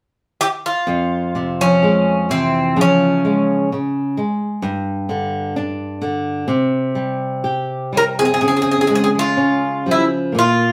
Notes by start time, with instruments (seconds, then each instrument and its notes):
0.41 bouzouki G4
0.66 bouzouki F4
0.87 nylon-string guitar F2
1.35 nylon-string guitar C3
1.60 twelve-string acoustic guitar F3, bouzouki C#4
1.83 nylon-string guitar G#3
2.29 nylon-string guitar C3, twelve-string acoustic guitar E3, bouzouki C4
2.76 nylon-string guitar C#3, twelve-string acoustic guitar F3
2.81 bouzouki C#4
3.25 nylon-string guitar G#3
3.72 nylon-string guitar C#3
4.17 nylon-string guitar G#3
4.62 nylon-string guitar G2
5.09 nylon-string guitar D3
5.56 nylon-string guitar D4
6.02 nylon-string guitar D3
6.48 nylon-string guitar C3
6.95 nylon-string guitar G3
7.44 nylon-string guitar G4
7.92 nylon-string guitar G3, twelve-string acoustic guitar C#4
7.97 bouzouki A#4
8.19 twelve-string acoustic guitar C4, bouzouki G#4
8.25 twelve-string acoustic guitar C4, bouzouki G#4
8.33 twelve-string acoustic guitar C4, bouzouki G#4
8.40 nylon-string guitar C#3, twelve-string acoustic guitar C4, bouzouki G#4
8.48 twelve-string acoustic guitar C4, bouzouki G#4
8.56 twelve-string acoustic guitar C4, bouzouki G#4
8.62 twelve-string acoustic guitar C4, bouzouki G#4
8.70 twelve-string acoustic guitar C4, bouzouki G#4
8.78 twelve-string acoustic guitar C4, bouzouki G#4
8.87 nylon-string guitar G#3, twelve-string acoustic guitar C4, bouzouki G#4
8.94 twelve-string acoustic guitar C4, bouzouki G#4
9.02 twelve-string acoustic guitar C4, bouzouki G#4
9.15 twelve-string acoustic guitar G#3
9.19 bouzouki F4
9.37 nylon-string guitar C#4
9.86 nylon-string guitar F3, twelve-string acoustic guitar G3
9.91 bouzouki E4
10.32 nylon-string guitar A#2, twelve-string acoustic guitar A#3
10.39 bouzouki F4